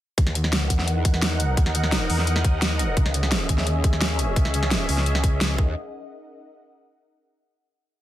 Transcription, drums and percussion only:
0.18 kick, closed hi-hat
0.27 snare
0.35 closed hi-hat
0.44 snare
0.53 snare, closed hi-hat
0.70 kick, closed hi-hat
0.79 snare
0.88 closed hi-hat
1.05 kick, closed hi-hat
1.14 snare
1.22 snare, closed hi-hat
1.40 closed hi-hat
1.57 kick, closed hi-hat
1.66 snare
1.75 closed hi-hat
1.84 snare
1.92 snare, closed hi-hat
2.10 open hi-hat
2.18 snare
2.27 closed hi-hat
2.36 snare
2.44 kick, closed hi-hat
2.62 snare, closed hi-hat
2.79 closed hi-hat
2.97 kick, closed hi-hat
3.06 snare
3.14 closed hi-hat
3.23 snare
3.32 snare, closed hi-hat
3.49 kick, closed hi-hat
3.58 snare
3.67 closed hi-hat
3.84 kick, closed hi-hat
3.93 snare
4.01 snare, closed hi-hat
4.19 closed hi-hat
4.36 kick, closed hi-hat
4.45 snare
4.54 closed hi-hat
4.63 snare
4.71 snare, closed hi-hat
4.89 open hi-hat
4.98 snare
5.06 closed hi-hat
5.15 snare
5.24 kick, closed hi-hat
5.41 snare, closed hi-hat
5.58 kick

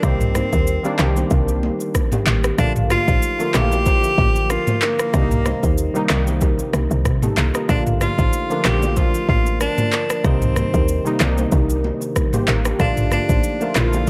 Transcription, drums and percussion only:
0.03 kick, cross-stick, shaker
0.21 mid tom, shaker
0.35 cross-stick, mid tom, high conga, shaker
0.53 kick, shaker
0.67 shaker
0.85 shaker
0.99 cross-stick, clap, low conga, shaker
1.17 high conga, shaker
1.30 kick, low conga, shaker
1.48 shaker
1.63 high conga
1.80 shaker
1.94 kick, cross-stick, high conga, shaker
2.12 mid tom, high conga, shaker
2.27 clap, shaker
2.44 cross-stick, shaker
2.58 kick, cross-stick, shaker
2.76 mid tom, shaker
2.90 cross-stick, mid tom, high conga, shaker
3.08 kick, shaker
3.22 shaker
3.40 shaker
3.54 cross-stick, clap, low conga, shaker
3.72 high conga, shaker
3.86 kick, low conga, shaker
4.04 shaker
4.18 kick, high conga
4.36 shaker
4.50 cross-stick, high conga, shaker
4.67 mid tom, high conga, shaker
4.82 clap, shaker
4.99 cross-stick, shaker
5.14 kick, cross-stick, low conga, shaker
5.31 mid tom, shaker
5.46 cross-stick, high conga, shaker
5.63 kick, shaker
5.78 shaker
5.95 shaker
6.09 cross-stick, clap, low conga, shaker
6.27 high conga, shaker
6.41 kick, low conga, shaker
6.59 shaker
6.73 cross-stick, high conga, shaker
6.91 shaker
7.05 kick, cross-stick, shaker
7.22 mid tom, high conga, shaker
7.37 clap, shaker
7.54 cross-stick, shaker
7.69 kick, cross-stick, shaker
7.87 mid tom, shaker
8.01 cross-stick, mid tom, high conga, shaker
8.19 kick, shaker
8.33 shaker
8.50 shaker
8.65 cross-stick, clap, low conga, shaker
8.82 high conga, shaker
8.96 kick, low conga, shaker
9.14 shaker
9.29 kick, high conga
9.46 shaker
9.60 cross-stick, high conga, shaker
9.78 mid tom, high conga, shaker
9.92 clap, shaker
10.10 cross-stick, shaker
10.24 kick, cross-stick, shaker
10.42 mid tom, shaker
10.56 cross-stick, mid tom, high conga, shaker
10.74 kick, shaker
10.88 shaker
11.06 shaker
11.20 cross-stick, clap, low conga, shaker
11.38 high conga, shaker
11.52 kick, low conga, shaker
11.70 shaker
11.84 high conga
12.02 shaker
12.16 kick, cross-stick, high conga, shaker
12.33 mid tom, high conga, shaker
12.48 clap, shaker
12.65 cross-stick, shaker
12.80 kick, cross-stick, shaker
12.97 mid tom, shaker
13.12 cross-stick, mid tom, high conga, shaker
13.29 kick, shaker
13.44 shaker
13.61 shaker
13.75 cross-stick, clap, low conga, shaker
13.93 high conga, shaker

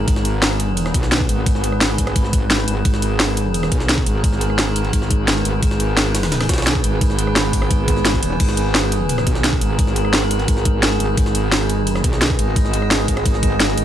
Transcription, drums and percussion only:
0.08 kick, closed hi-hat, ride
0.16 snare
0.25 closed hi-hat, ride
0.42 snare, closed hi-hat, open hi-hat
0.51 cross-stick
0.60 closed hi-hat, ride
0.77 closed hi-hat, ride
0.86 cross-stick, snare
0.94 kick, closed hi-hat, ride
1.03 snare
1.12 snare, closed hi-hat, ride
1.20 kick
1.29 closed hi-hat, ride
1.46 kick, closed hi-hat, ride
1.55 snare
1.64 closed hi-hat, ride
1.72 cross-stick
1.81 snare, closed hi-hat, ride
1.90 cross-stick
1.98 kick, closed hi-hat, ride
2.07 cross-stick, ride
2.16 kick, closed hi-hat, ride
2.24 snare
2.33 kick, closed hi-hat, ride
2.50 snare, closed hi-hat, ride
2.59 snare
2.68 closed hi-hat, ride
2.85 kick, closed hi-hat, ride
2.94 snare
3.02 closed hi-hat, ride
3.20 snare, closed hi-hat, open hi-hat
3.28 cross-stick
3.37 closed hi-hat, ride
3.54 closed hi-hat, ride
3.63 cross-stick, snare
3.72 kick, closed hi-hat, ride
3.80 snare
3.89 snare, closed hi-hat, ride
3.98 kick
4.06 closed hi-hat, ride
4.24 kick, closed hi-hat, ride
4.33 snare
4.41 closed hi-hat, ride
4.50 cross-stick
4.59 snare, closed hi-hat, ride
4.67 cross-stick
4.76 closed hi-hat, ride
4.85 ride
4.93 kick, closed hi-hat, ride
5.02 snare
5.11 kick, closed hi-hat
5.28 snare, closed hi-hat, ride
5.37 snare
5.45 closed hi-hat, ride
5.63 kick, closed hi-hat, ride
5.71 snare
5.80 closed hi-hat, ride
5.97 snare, closed hi-hat, open hi-hat
6.06 cross-stick
6.15 snare, closed hi-hat, open hi-hat
6.23 snare, open hi-hat
6.32 snare, closed hi-hat, open hi-hat
6.41 cross-stick, snare, open hi-hat
6.49 kick, snare, closed hi-hat, open hi-hat
6.54 snare, open hi-hat
6.58 snare, open hi-hat
6.62 snare, open hi-hat
6.67 snare, closed hi-hat, ride
6.75 kick
6.84 closed hi-hat, ride
7.01 kick, closed hi-hat, ride
7.10 snare
7.19 closed hi-hat, ride
7.27 cross-stick
7.36 snare, closed hi-hat, ride
7.45 cross-stick
7.53 kick, closed hi-hat, open hi-hat
7.62 cross-stick
7.71 kick, closed hi-hat, ride
7.88 kick, closed hi-hat, ride
7.97 snare
8.05 snare, closed hi-hat, ride
8.14 kick, snare
8.23 closed hi-hat, ride
8.40 kick, closed hi-hat, crash, ride
8.49 snare
8.57 closed hi-hat, ride
8.75 snare, closed hi-hat, open hi-hat
8.83 cross-stick
8.92 closed hi-hat, ride
9.09 closed hi-hat, ride
9.18 cross-stick, snare
9.27 kick, closed hi-hat, ride
9.35 snare
9.44 snare, closed hi-hat, ride
9.53 kick
9.61 closed hi-hat, ride
9.79 kick, closed hi-hat, ride
9.87 snare
9.96 closed hi-hat, ride
10.05 cross-stick
10.13 snare, closed hi-hat, ride
10.22 cross-stick
10.31 closed hi-hat, ride
10.39 ride
10.48 kick, closed hi-hat, ride
10.57 snare
10.65 kick, closed hi-hat
10.83 snare, closed hi-hat, ride
10.91 snare
11.00 closed hi-hat, ride
11.17 kick, closed hi-hat, ride
11.26 snare
11.35 closed hi-hat, ride
11.52 snare, closed hi-hat, open hi-hat
11.61 cross-stick
11.69 closed hi-hat, ride
11.87 closed hi-hat, ride
11.96 cross-stick, snare
12.04 kick, closed hi-hat, ride
12.13 snare
12.21 snare, closed hi-hat, ride
12.30 kick
12.39 closed hi-hat, ride
12.56 kick, closed hi-hat, ride
12.65 snare
12.73 closed hi-hat, ride
12.82 cross-stick
12.91 snare, closed hi-hat, ride
13.00 cross-stick
13.08 kick, closed hi-hat, ride
13.17 cross-stick, ride
13.26 kick, closed hi-hat, ride
13.34 snare
13.43 kick, closed hi-hat, ride
13.60 snare, closed hi-hat, ride
13.69 snare
13.78 closed hi-hat, ride

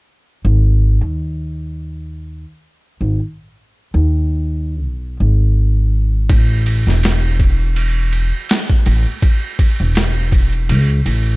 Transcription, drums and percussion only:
6.30 kick, ride
6.66 ride
6.88 snare
7.03 snare, ride
7.40 kick, ride
7.76 ride
8.13 ride
8.49 snare, open hi-hat
8.70 kick
8.86 ride
9.22 kick, ride
9.59 kick, ride
9.95 snare, ride
10.32 kick, ride
10.53 ride
10.69 ride
10.90 ride
11.06 ride

